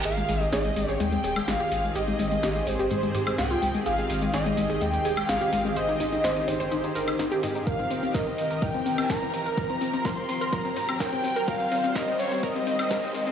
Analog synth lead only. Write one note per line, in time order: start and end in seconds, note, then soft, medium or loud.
0.05 0.49 F5 loud
0.53 0.89 D#5 loud
0.89 1.02 C#5 loud
1.00 1.49 G5 loud
1.48 1.97 F5 loud
1.96 2.69 D#5 loud
2.67 3.38 C5 loud
3.38 3.83 G5 loud
3.86 4.30 F5 loud
4.34 4.83 D#5 medium
4.81 5.30 G5 loud
5.29 5.76 F5 loud
5.76 6.49 D#5 loud
6.48 7.43 C5 medium
7.67 8.16 F5 loud
8.15 8.64 D#5 medium
8.62 9.11 G5 loud
9.10 9.57 A#5 loud
9.57 10.07 A#5 loud
10.05 10.54 C6 loud
10.53 11.02 A#5 loud
11.00 11.47 G5 loud
11.48 11.97 F5 loud
11.96 12.19 D#5 medium
12.19 12.41 C#5 medium
12.43 13.32 D#5 medium